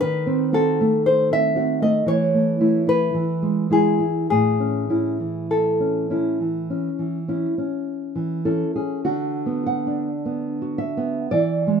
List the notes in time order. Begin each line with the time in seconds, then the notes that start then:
0.01 D#3 B4
0.26 C4
0.53 C4 F#4 A4
0.81 A3
1.06 C5
1.31 C4 E5
1.55 C4 F#4
1.82 A3 D#5
2.06 E3 C#5
2.34 A3
2.60 A3 E4
2.87 E4 B4
3.14 E3
3.42 G#3
3.70 G#3 E4 G#4
4.00 E4
4.30 A2 G#4
4.60 C#4
4.90 C#4 E4
5.20 E3
5.51 A4
5.80 C#4
6.10 C#4 E4
6.40 E3
6.70 C#4
6.99 E3
7.28 C#4 E4
7.58 C#4
8.15 E3
8.45 C#4 E4 A4
8.76 C#4 G#4
9.05 D3 F#4
9.46 B3
9.66 F#5
9.87 D4
10.25 B3
10.62 F#4
10.78 E5
10.97 B3
11.31 E3 D5
11.67 G#3